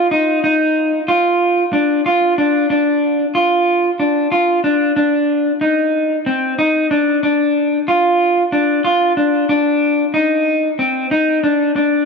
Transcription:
0.11 0.39 D#4 medium
0.44 0.98 D#4 medium
1.08 1.63 F4 medium
1.73 2.00 D4 medium
2.06 2.33 F4 medium
2.38 2.65 D4 medium
2.70 3.25 D4 medium
3.35 3.89 F4 medium
4.00 4.27 D4 medium
4.32 4.59 F4 medium
4.64 4.91 D4 medium
4.96 5.51 D4 medium
5.61 6.16 D#4 medium
6.26 6.54 C4 medium
6.59 6.86 D#4 medium
6.91 7.18 D4 medium
7.23 7.78 D4 medium
7.88 8.42 F4 medium
8.52 8.80 D4 medium
8.84 9.12 F4 medium
9.17 9.44 D4 medium
9.49 10.04 D4 medium
10.14 10.68 D#4 medium
10.79 11.06 C4 medium
11.11 11.38 D#4 medium
11.44 11.71 D4 medium
11.76 12.05 D4 medium

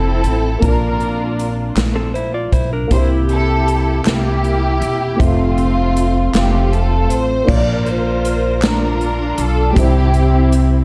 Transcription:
0.00 0.20 F1 medium
0.00 0.59 F3 soft
0.00 0.57 A3 medium
0.00 0.57 C4 medium
0.00 0.60 C4 medium
0.00 0.58 E4 soft
0.00 0.60 E4 medium
0.00 0.63 A4 medium
0.00 0.64 A4 medium
0.24 0.59 A1 medium
0.24 closed hi-hat medium
0.59 1.73 A#1 medium
0.59 1.73 A#2 medium
0.59 2.85 A#3 medium
0.59 0.68 C4 soft
0.59 2.87 F4 soft
0.59 kick medium
0.59 closed hi-hat medium
0.64 1.74 D4 medium
0.64 2.89 D4 medium
0.64 1.74 F4 medium
0.64 1.49 A#4 medium
0.64 2.89 A#4 medium
0.64 2.88 A5 soft
1.00 closed hi-hat soft
1.39 closed hi-hat soft
1.76 2.49 A#1 medium
1.76 snare medium
1.76 clap medium
1.76 closed hi-hat medium
1.95 2.14 C4 medium
1.95 2.14 A4 medium
2.14 2.33 E4 medium
2.14 2.33 C5 medium
2.14 closed hi-hat soft
2.34 2.52 F4 medium
2.34 2.52 D5 medium
2.52 2.88 B1 medium
2.52 2.71 E4 medium
2.52 2.71 C5 medium
2.52 kick medium
2.52 closed hi-hat medium
2.73 3.09 D4 medium
2.73 3.09 A#4 medium
2.88 4.01 C2 loud
2.88 4.01 C3 medium
2.88 5.14 A#3 medium
2.88 5.15 C4 soft
2.88 5.16 E4 medium
2.88 kick medium
2.88 closed hi-hat medium
2.93 3.30 E4 medium
2.93 5.17 G4 soft
2.93 4.03 G4 medium
2.93 3.10 C5 medium
2.93 5.18 C5 medium
3.29 4.06 E4 medium
3.29 4.02 A4 medium
3.29 closed hi-hat soft
3.68 closed hi-hat soft
4.05 4.78 C2 medium
4.05 5.17 A#3 medium
4.05 5.17 E4 medium
4.05 5.21 G4 medium
4.05 snare medium
4.05 clap medium
4.05 closed hi-hat medium
4.44 closed hi-hat soft
4.81 5.16 E1 medium
4.81 closed hi-hat medium
5.16 7.42 A3 medium
5.16 7.43 C4 medium
5.16 7.44 E5 medium
5.20 6.30 F1 medium
5.20 6.31 A3 medium
5.20 6.31 C4 medium
5.20 7.45 F4 soft
5.20 6.35 F4 medium
5.20 7.46 A4 medium
5.20 kick medium
5.20 closed hi-hat medium
5.58 closed hi-hat soft
5.97 closed hi-hat soft
6.34 7.06 F1 medium
6.34 7.45 A3 soft
6.34 7.45 C4 soft
6.34 7.17 F4 medium
6.34 6.70 G4 medium
6.34 snare medium
6.34 clap medium
6.34 closed hi-hat medium
6.73 7.11 A4 medium
6.73 closed hi-hat soft
7.10 7.45 A1 medium
7.10 7.49 C5 medium
7.10 closed hi-hat medium
7.44 8.58 A#2 medium
7.44 9.70 A#3 medium
7.44 9.71 D4 soft
7.44 9.72 F4 medium
7.49 9.35 A#1 loud
7.49 7.88 F4 medium
7.49 8.60 A#4 medium
7.49 7.87 D5 medium
7.49 kick loud
7.49 crash loud
7.58 9.77 D5 medium
7.86 8.64 F4 medium
7.86 8.63 C5 medium
7.86 closed hi-hat soft
8.25 closed hi-hat medium
8.62 9.74 D4 medium
8.62 9.74 F4 medium
8.62 9.39 A#4 medium
8.62 snare medium
8.62 clap medium
8.62 closed hi-hat medium
9.01 closed hi-hat soft
9.38 9.73 B1 medium
9.38 9.76 A4 medium
9.38 closed hi-hat medium
9.72 10.84 C3 medium
9.72 10.84 G3 medium
9.72 10.84 C4 medium
9.72 9.83 D4 soft
9.72 10.61 G4 medium
9.76 10.84 C2 loud
9.76 10.84 C4 medium
9.76 10.84 E4 medium
9.76 10.84 G4 medium
9.76 10.84 C5 medium
9.76 kick loud
9.76 closed hi-hat medium
9.82 10.84 E4 medium
10.14 closed hi-hat soft
10.52 closed hi-hat medium

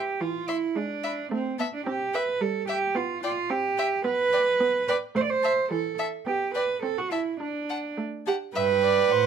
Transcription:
0.00 0.22 G4 medium
0.21 0.65 E3 medium
0.21 0.50 F4 soft
0.48 0.78 E4 medium
0.48 0.56 E5 soft
0.48 0.56 C6 soft
0.76 1.20 G#3 soft
0.76 1.32 D4 medium
1.03 1.11 E5 soft
1.03 1.12 B5 soft
1.32 1.75 A3 medium
1.32 1.58 C4 medium
1.59 1.65 B3 medium
1.59 1.68 E5 soft
1.59 1.67 A5 soft
1.74 1.86 D4 medium
1.87 2.30 C4 medium
1.87 2.16 G4 medium
2.13 2.43 B4 medium
2.13 2.23 E5 soft
2.13 2.21 G5 soft
2.41 2.84 G3 medium
2.41 2.68 A4 medium
2.67 2.97 G4 medium
2.67 2.77 E5 soft
2.67 2.75 G5 soft
2.95 3.39 B3 medium
2.95 3.23 F4 medium
3.23 3.52 F4 medium
3.23 3.32 D5 soft
3.23 3.31 G5 soft
3.50 3.94 C4 medium
3.50 4.05 G4 medium
3.77 3.87 E5 soft
3.77 3.85 G5 soft
4.04 4.49 B3 medium
4.04 4.87 B4 medium
4.33 4.41 D5 soft
4.33 4.41 G5 soft
4.60 5.04 B3 medium
4.88 4.96 B4 medium
4.88 4.97 D5 soft
4.88 4.96 G5 soft
5.15 5.60 A3 medium
5.15 5.24 C5 medium
5.23 5.32 D5 medium
5.30 5.71 C5 medium
5.43 5.52 E5 soft
5.43 5.51 A5 soft
5.71 6.15 E3 medium
5.71 5.99 A4 medium
5.98 6.07 E5 soft
5.98 6.06 A5 soft
6.27 6.71 B3 medium
6.27 6.53 G4 medium
6.55 6.82 B4 medium
6.55 6.63 D5 soft
6.55 6.63 G5 soft
6.82 7.28 C4 medium
6.82 6.99 A4 medium
6.98 7.13 F#4 medium
7.11 7.40 E4 soft
7.11 7.20 E5 soft
7.11 7.19 A5 soft
7.40 7.97 D4 medium
7.40 7.86 D4 soft
7.69 7.78 F#5 soft
7.69 7.77 A5 soft
7.98 8.25 A3 soft
8.26 8.35 G4 medium
8.26 8.35 F#5 soft
8.26 8.34 A5 soft
8.55 9.07 G2 medium
8.55 9.27 B4 medium
8.55 8.64 E5 medium
8.55 9.12 G5 soft
8.83 9.13 D5 medium
9.10 9.27 A2 medium
9.10 9.27 C5 medium
9.10 9.27 F#5 medium

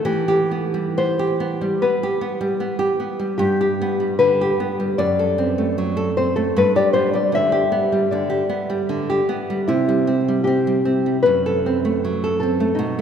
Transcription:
0.05 1.76 E3 medium
0.05 0.92 G4 medium
0.28 0.65 G4 medium
0.51 0.88 B3 medium
0.74 1.10 G3 soft
0.98 1.31 B3 medium
0.98 1.77 C5 loud
1.19 1.52 G4 medium
1.40 1.73 B3 medium
1.61 1.93 G3 medium
1.82 2.14 B3 soft
1.82 2.96 B4 medium
2.03 2.34 G4 medium
2.21 2.53 B3 medium
2.41 2.72 G3 medium
2.60 2.92 B3 medium
2.79 3.11 G4 medium
3.00 3.32 B3 medium
3.19 3.40 G3 soft
3.38 4.94 G2 medium
3.38 4.15 G4 medium
3.61 3.92 G4 medium
3.81 4.13 B3 medium
4.00 4.32 G3 soft
4.19 4.51 D3 medium
4.19 4.94 B4 medium
4.41 4.72 G4 medium
4.60 4.91 B3 soft
4.80 4.99 G3 soft
4.98 6.51 F#2 medium
4.98 6.12 D5 medium
5.19 5.50 A4 soft
5.38 5.69 C4 medium
5.58 5.89 A3 medium
5.78 6.09 F#3 medium
5.97 6.28 A4 medium
6.17 6.48 C4 medium
6.17 6.35 C5 medium
6.36 6.55 A3 soft
6.36 6.54 A4 medium
6.56 8.05 G2 medium
6.56 6.74 B4 loud
6.76 7.06 G4 medium
6.76 6.93 D5 medium
6.93 7.24 B3 medium
6.93 7.11 C5 medium
7.13 7.44 G3 soft
7.13 7.32 D5 medium
7.32 7.63 D3 soft
7.32 8.06 E5 loud
7.52 7.82 G4 medium
7.72 8.02 B3 medium
7.92 8.22 G3 soft
8.11 8.42 D3 medium
8.11 9.24 D5 medium
8.30 8.60 G4 medium
8.49 8.80 B3 medium
8.70 9.00 G3 medium
8.89 9.20 D3 medium
9.10 9.40 G4 medium
9.29 9.59 B3 medium
9.50 9.68 G3 medium
9.68 11.20 C3 medium
9.68 10.41 E4 medium
9.89 10.18 G3 medium
10.07 10.37 C4 medium
10.28 10.58 G3 medium
10.44 10.77 C4 medium
10.44 11.18 G4 medium
10.67 10.96 G3 medium
10.85 11.15 C4 medium
11.06 11.24 G3 soft
11.23 12.73 F#2 medium
11.23 12.34 B4 medium
11.46 11.75 A4 medium
11.66 11.95 C4 soft
11.85 12.13 A3 medium
12.04 12.32 F#3 soft
12.24 12.51 A4 soft
12.40 12.70 C4 medium
12.40 12.73 A4 medium
12.60 12.77 A3 soft
12.75 13.01 B2 medium
12.75 13.01 D#4 medium

